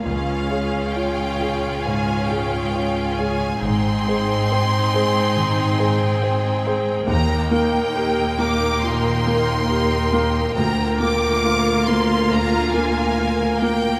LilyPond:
<<
  \new Staff \with { instrumentName = "Violin section" } { \time 4/4 \key ees \major \tempo 4 = 69 f''4 g''4 aes''8 g''4 aes''8 | c'''2.~ c'''8 r8 | bes''8 g''4 d'''8 c'''2 | bes''8 d'''4 c'''8 bes''8 aes''4 g''8 | }
  \new Staff \with { instrumentName = "Violin section" } { \time 4/4 \key ees \major << { f''1 | g''1 | g''1~ | g''4 f''2. | } \\ { aes'1 | aes'1 | bes'1 | bes'1 | } >> }
  \new Staff \with { instrumentName = "Grand piano" } { \time 4/4 \key ees \major des,8 <aes des''>8 <f' des''>8 <aes des''>8 aes,8 <aes des''>8 <f' des''>8 <aes des''>8 | aes,8 <aes c''>8 <c'' g''>8 <aes c''>8 ees8 <aes c''>8 <c'' g''>8 <aes c''>8 | ees,8 <bes bes'>8 <g' bes'>8 <bes bes'>8 bes,8 <bes bes'>8 <g' bes'>8 <bes bes'>8 | d,8 <bes bes'>8 <f' bes'>8 <bes bes'>8 d,8 <bes bes'>8 <f' bes'>8 <bes bes'>8 | }
  \new Staff \with { instrumentName = "Viola section" } { \time 4/4 \key ees \major <des' f'>1 | <c' ees'>1 | <bes ees'>1 | <bes f'>1 | }
  \new Staff \with { instrumentName = "Cello section" } { \clef bass \time 4/4 \key ees \major des,1 | aes,1 | ees,1 | d,1 | }
  \new Staff \with { instrumentName = "Double bass section" } { \clef bass \time 4/4 \key ees \major des,4 r2. | aes,,4 r2. | ees,4 r2. | d,4 r2. | }
>>